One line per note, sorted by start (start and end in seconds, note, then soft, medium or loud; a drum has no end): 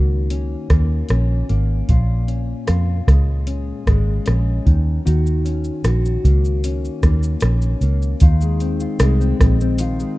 0.00 0.54 C#2 medium
0.00 1.89 D#3 medium
0.00 0.70 A#3 medium
0.00 0.30 C#4 medium
0.00 1.89 F#4 medium
0.30 1.10 C#4 soft
0.30 closed hi-hat medium
0.70 1.02 D#2 medium
0.70 1.49 A#3 medium
0.70 kick medium
0.70 cross-stick medium
0.70 closed hi-hat medium
1.09 1.42 A#1 loud
1.09 2.27 C#4 medium
1.09 cross-stick medium
1.09 closed hi-hat medium
1.49 1.81 G#1 medium
1.49 3.07 A#3 medium
1.49 closed hi-hat soft
1.89 2.52 A#1 medium
1.89 4.74 A#2 medium
1.89 2.66 F4 medium
1.89 kick medium
1.89 closed hi-hat medium
2.28 3.47 C#4 soft
2.28 closed hi-hat soft
2.67 3.00 F2 medium
2.67 4.73 F4 medium
2.67 cross-stick medium
2.67 closed hi-hat medium
3.07 3.71 C#2 medium
3.07 3.86 G#3 soft
3.07 kick medium
3.07 cross-stick medium
3.07 closed hi-hat medium
3.47 4.25 C#4 medium
3.47 closed hi-hat medium
3.86 4.18 G#1 medium
3.86 4.74 G#3 medium
3.86 kick medium
3.86 cross-stick medium
3.86 closed hi-hat soft
4.26 4.59 A#1 medium
4.26 5.08 C#4 medium
4.26 cross-stick medium
4.26 closed hi-hat medium
4.66 4.98 D#2 medium
4.66 5.05 D#3 medium
4.66 kick medium
4.66 closed hi-hat soft
5.05 5.69 D#2 medium
5.05 8.21 D#3 medium
5.05 5.84 F#4 medium
5.05 closed hi-hat medium
5.05 shaker medium
5.26 shaker soft
5.45 6.63 C#4 medium
5.45 closed hi-hat medium
5.45 shaker soft
5.64 shaker medium
5.84 6.16 A#1 medium
5.84 8.22 F#4 medium
5.84 cross-stick medium
5.84 closed hi-hat medium
5.84 shaker medium
6.05 shaker soft
6.24 6.88 C#2 medium
6.24 7.03 A#3 medium
6.24 kick medium
6.24 closed hi-hat medium
6.24 shaker soft
6.45 shaker soft
6.64 7.42 C#4 medium
6.64 closed hi-hat medium
6.64 shaker medium
6.85 shaker soft
7.03 7.35 D#2 loud
7.03 7.82 A#3 medium
7.03 kick medium
7.03 cross-stick medium
7.03 closed hi-hat soft
7.03 shaker medium
7.23 shaker medium
7.41 7.74 A#1 medium
7.41 8.30 C#4 medium
7.41 cross-stick loud
7.41 closed hi-hat medium
7.41 shaker medium
7.62 shaker soft
7.81 8.13 C#2 medium
7.81 8.30 A#3 medium
7.81 closed hi-hat soft
7.81 shaker soft
8.02 shaker soft
8.20 8.85 D#2 loud
8.20 9.79 D#3 medium
8.20 8.80 F4 medium
8.20 kick loud
8.20 closed hi-hat medium
8.20 shaker medium
8.41 8.99 G#3 medium
8.41 shaker soft
8.60 9.19 C4 medium
8.60 closed hi-hat medium
8.60 shaker medium
8.80 9.79 F4 medium
8.80 shaker medium
9.00 9.32 C2 loud
9.00 9.39 G#3 medium
9.00 cross-stick loud
9.00 closed hi-hat medium
9.00 shaker medium
9.20 9.60 C4 medium
9.20 shaker soft
9.40 10.03 A#1 medium
9.40 9.99 G#3 medium
9.40 kick medium
9.40 cross-stick medium
9.40 closed hi-hat medium
9.40 shaker medium
9.61 10.18 C4 medium
9.61 shaker soft
9.78 10.18 D#3 medium
9.78 10.18 F4 medium
9.78 closed hi-hat medium
9.78 shaker medium
10.00 10.18 G#3 medium
10.00 shaker medium